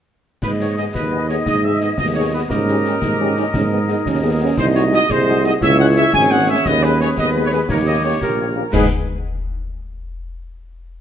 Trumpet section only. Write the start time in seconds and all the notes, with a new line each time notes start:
0.42 B4
0.60 C#5
0.77 D#5
0.94 B4
1.27 C#5
1.46 D#5
1.64 E5
1.81 D#5
1.98 D#5
2.14 C#5
2.32 B4
2.49 A#4
4.57 C5
4.75 C#5
4.93 D#5
5.11 C5
5.45 D#5
5.62 E5
5.79 F#5
5.97 E5
6.13 G#5
6.31 F#5
6.49 E5
6.66 D#5
6.83 B4
7.01 C#5
7.17 D#5
7.45 C#5
7.53 B4
7.70 A#4
7.86 D#5
8.05 C#5
8.22 A#4
8.73 G#4